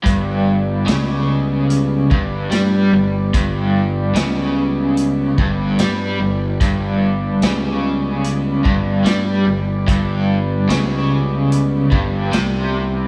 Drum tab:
HH |x-x-x-x-|x-x-x-x-|x-x-x-x-|x-x-x-x-|
SD |--o---o-|--o---o-|--o---o-|--o---o-|
BD |o----o--|o----o--|o----o--|o----o--|